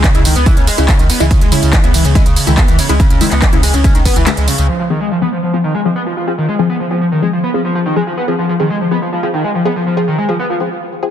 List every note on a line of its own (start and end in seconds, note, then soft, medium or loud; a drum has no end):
0.00 0.12 C#3 loud
0.00 0.12 G#3 medium
0.00 0.12 E4 loud
0.00 clap loud
0.00 closed hi-hat medium
0.00 ride medium
0.00 tambourine soft
0.04 0.10 C#3 medium
0.04 kick loud
0.15 0.25 C#2 medium
0.15 0.23 C#3 medium
0.15 0.20 C#3 medium
0.15 0.20 G#3 medium
0.15 0.20 E4 loud
0.15 closed hi-hat medium
0.15 tambourine soft
0.25 0.35 C#2 loud
0.25 0.29 D#3 loud
0.25 open hi-hat loud
0.25 ride medium
0.25 tambourine medium
0.36 0.46 C#2 medium
0.36 0.44 B3 loud
0.36 closed hi-hat soft
0.36 tambourine soft
0.46 0.54 C#3 medium
0.46 0.52 E3 loud
0.46 0.54 G#3 medium
0.46 0.54 E4 medium
0.46 kick loud
0.46 closed hi-hat medium
0.46 ride medium
0.46 tambourine soft
0.57 0.67 C#2 medium
0.57 0.63 C#3 medium
0.57 closed hi-hat medium
0.57 tambourine soft
0.67 0.73 G#3 loud
0.67 open hi-hat loud
0.67 ride medium
0.67 tambourine medium
0.78 0.88 C#2 medium
0.78 0.84 C#3 medium
0.78 0.86 C#3 medium
0.78 0.86 G#3 medium
0.78 0.86 E4 medium
0.78 closed hi-hat medium
0.78 tambourine soft
0.88 0.97 C#3 medium
0.88 kick loud
0.88 clap loud
0.88 closed hi-hat medium
0.88 ride medium
0.88 tambourine soft
0.99 1.09 C#2 medium
0.99 1.02 D#3 loud
0.99 closed hi-hat medium
0.99 tambourine soft
1.10 1.18 B3 loud
1.10 open hi-hat loud
1.10 ride medium
1.10 tambourine medium
1.20 1.31 C#2 medium
1.20 1.25 C#3 loud
1.20 1.26 E3 loud
1.20 1.25 G#3 medium
1.20 1.25 E4 loud
1.20 closed hi-hat soft
1.20 tambourine soft
1.31 1.36 C#3 medium
1.31 kick loud
1.31 closed hi-hat medium
1.31 ride medium
1.31 tambourine soft
1.41 1.52 C#2 medium
1.41 1.47 G#3 loud
1.41 closed hi-hat medium
1.41 tambourine soft
1.52 1.58 C#3 medium
1.52 1.81 C#3 medium
1.52 1.81 G#3 medium
1.52 1.81 E4 loud
1.52 open hi-hat loud
1.52 ride medium
1.52 tambourine medium
1.62 1.73 C#2 medium
1.62 1.71 C#3 medium
1.62 closed hi-hat medium
1.62 tambourine soft
1.73 1.76 D#3 loud
1.73 kick loud
1.73 clap loud
1.73 closed hi-hat medium
1.73 ride medium
1.73 tambourine soft
1.84 1.94 C#2 medium
1.84 1.89 C#3 medium
1.84 1.89 G#3 medium
1.84 1.92 B3 loud
1.84 1.89 E4 loud
1.84 closed hi-hat medium
1.84 tambourine soft
1.94 2.04 C#2 loud
1.94 2.00 E3 loud
1.94 open hi-hat loud
1.94 ride medium
1.94 tambourine medium
2.05 2.15 C#2 medium
2.05 2.10 C#3 medium
2.05 closed hi-hat medium
2.05 tambourine soft
2.15 2.23 C#3 medium
2.15 2.21 G#3 loud
2.15 2.23 G#3 medium
2.15 2.23 E4 medium
2.15 kick loud
2.15 closed hi-hat medium
2.15 ride medium
2.15 tambourine soft
2.26 2.36 C#2 medium
2.26 2.32 C#3 medium
2.26 closed hi-hat medium
2.26 tambourine soft
2.36 2.45 C#3 medium
2.36 open hi-hat loud
2.36 ride medium
2.36 tambourine medium
2.47 2.57 C#2 medium
2.47 2.55 C#3 medium
2.47 2.50 D#3 loud
2.47 2.55 G#3 medium
2.47 2.55 E4 medium
2.47 closed hi-hat medium
2.47 tambourine soft
2.58 2.66 B3 loud
2.58 kick loud
2.58 clap loud
2.58 closed hi-hat medium
2.58 ride medium
2.58 tambourine soft
2.68 2.78 C#2 medium
2.68 2.74 E3 loud
2.68 closed hi-hat medium
2.68 tambourine soft
2.79 2.84 C#3 medium
2.79 open hi-hat loud
2.79 ride medium
2.79 tambourine medium
2.89 3.00 C#2 medium
2.89 2.94 C#3 medium
2.89 2.94 G#3 medium
2.89 2.95 G#3 loud
2.89 2.94 E4 loud
2.89 closed hi-hat medium
2.89 tambourine soft
3.00 3.06 C#3 medium
3.00 kick loud
3.00 closed hi-hat medium
3.00 ride medium
3.00 tambourine soft
3.10 3.21 C#2 medium
3.10 3.19 C#3 medium
3.10 closed hi-hat medium
3.10 tambourine soft
3.21 3.50 C#3 loud
3.21 3.24 D#3 loud
3.21 3.50 G#3 medium
3.21 3.50 E4 loud
3.21 open hi-hat loud
3.21 ride medium
3.21 tambourine medium
3.32 3.42 C#2 medium
3.32 3.40 B3 loud
3.32 clap medium
3.32 closed hi-hat medium
3.32 tambourine soft
3.42 3.48 E3 loud
3.42 kick loud
3.42 clap loud
3.42 closed hi-hat medium
3.42 ride medium
3.42 tambourine soft
3.53 3.63 C#2 medium
3.53 3.58 C#3 medium
3.53 3.58 G#3 medium
3.53 3.58 E4 loud
3.53 closed hi-hat medium
3.53 tambourine soft
3.63 3.73 C#2 loud
3.63 3.69 G#3 loud
3.63 open hi-hat loud
3.63 ride medium
3.63 tambourine medium
3.74 3.84 C#2 medium
3.74 3.79 C#3 medium
3.74 closed hi-hat medium
3.74 tambourine soft
3.84 3.93 C#3 medium
3.84 3.93 G#3 medium
3.84 3.93 E4 medium
3.84 kick loud
3.84 closed hi-hat medium
3.84 ride medium
3.84 tambourine soft
3.95 4.05 C#2 medium
3.95 3.98 D#3 loud
3.95 closed hi-hat medium
3.95 tambourine soft
4.05 4.14 B3 loud
4.05 kick medium
4.05 open hi-hat loud
4.05 ride medium
4.05 tambourine medium
4.16 4.26 C#2 medium
4.16 4.22 E3 loud
4.16 closed hi-hat medium
4.16 tambourine soft
4.27 4.32 C#3 medium
4.27 4.32 G#3 medium
4.27 4.32 E4 loud
4.27 clap loud
4.27 closed hi-hat medium
4.27 ride medium
4.27 tambourine soft
4.37 4.48 C#2 medium
4.37 4.43 G#3 loud
4.37 closed hi-hat medium
4.37 tambourine soft
4.48 4.53 C#3 medium
4.48 open hi-hat loud
4.48 ride medium
4.48 tambourine medium
4.58 4.69 C#2 medium
4.58 4.67 C#3 medium
4.58 closed hi-hat medium
4.58 tambourine soft
4.69 4.77 F3 medium
4.79 4.83 F3 loud
4.90 4.99 D#3 loud
4.90 5.19 F3 medium
4.90 5.19 C4 medium
4.90 5.19 G#4 loud
5.01 5.06 G#3 loud
5.11 5.17 F3 medium
5.22 5.27 F3 medium
5.22 5.27 B3 loud
5.22 5.27 C4 medium
5.22 5.27 G#4 loud
5.32 5.38 F3 medium
5.43 5.51 F3 medium
5.53 5.57 F3 loud
5.53 5.62 F3 medium
5.53 5.62 C4 medium
5.53 5.62 G#4 medium
5.64 5.72 D#3 loud
5.75 5.80 G#3 loud
5.85 5.93 F3 medium
5.85 5.91 F3 medium
5.85 5.93 C4 medium
5.85 5.93 G#4 medium
5.96 6.01 B3 loud
6.06 6.12 F3 medium
6.17 6.25 F3 medium
6.27 6.32 F3 medium
6.27 6.31 F3 loud
6.27 6.32 C4 medium
6.27 6.32 G#4 loud
6.38 6.46 D#3 loud
6.48 6.54 G#3 loud
6.59 6.88 F3 medium
6.59 6.65 F3 medium
6.59 6.88 C4 medium
6.59 6.88 G#4 loud
6.70 6.75 B3 loud
6.80 6.86 F3 medium
6.91 6.96 F3 medium
6.91 6.99 F3 medium
6.91 6.96 C4 medium
6.91 6.96 G#4 loud
7.01 7.05 F3 loud
7.12 7.20 D#3 loud
7.22 7.31 F3 medium
7.22 7.28 G#3 loud
7.22 7.31 C4 medium
7.22 7.31 G#4 medium
7.33 7.39 F3 medium
7.44 7.49 B3 loud
7.54 7.62 F3 medium
7.54 7.60 F3 medium
7.54 7.62 C4 medium
7.54 7.62 G#4 medium
7.65 7.73 F3 medium
7.75 7.79 F3 loud
7.86 7.94 D#3 loud
7.96 8.01 F3 medium
7.96 8.02 G#3 loud
7.96 8.01 C4 medium
7.96 8.01 G#4 loud
8.07 8.13 F3 medium
8.17 8.23 B3 loud
8.28 8.57 F3 medium
8.28 8.34 F3 medium
8.28 8.57 C4 medium
8.28 8.57 G#4 loud
8.39 8.47 F3 medium
8.49 8.53 F3 loud
8.60 8.68 D#3 loud
8.60 8.65 F3 medium
8.60 8.65 C4 medium
8.60 8.65 G#4 loud
8.70 8.76 G#3 loud
8.81 8.86 F3 medium
8.91 9.00 F3 medium
8.91 8.97 B3 loud
8.91 9.00 C4 medium
8.91 9.00 G#4 medium
9.02 9.08 F3 medium
9.13 9.21 F3 medium
9.23 9.31 F3 medium
9.23 9.26 F3 loud
9.23 9.31 C4 medium
9.23 9.31 G#4 medium
9.34 9.42 D#3 loud
9.44 9.50 G#3 loud
9.55 9.60 F3 medium
9.65 9.70 F3 medium
9.65 9.71 B3 loud
9.65 9.70 C4 medium
9.65 9.70 G#4 loud
9.76 9.82 F3 medium
9.86 9.95 F3 medium
9.97 10.26 F3 medium
9.97 10.00 F3 medium
9.97 10.26 C4 medium
9.97 10.26 G#4 loud
10.08 10.16 D#3 loud
10.18 10.24 G#3 loud
10.29 10.34 F3 medium
10.29 10.34 C4 medium
10.29 10.34 G#4 loud
10.39 10.45 B3 loud
10.50 10.56 F3 medium
10.60 10.69 F3 medium
10.60 10.69 C4 medium
10.60 10.69 G#4 medium
11.03 11.08 F3 medium
11.03 11.08 C4 medium
11.03 11.08 G#4 loud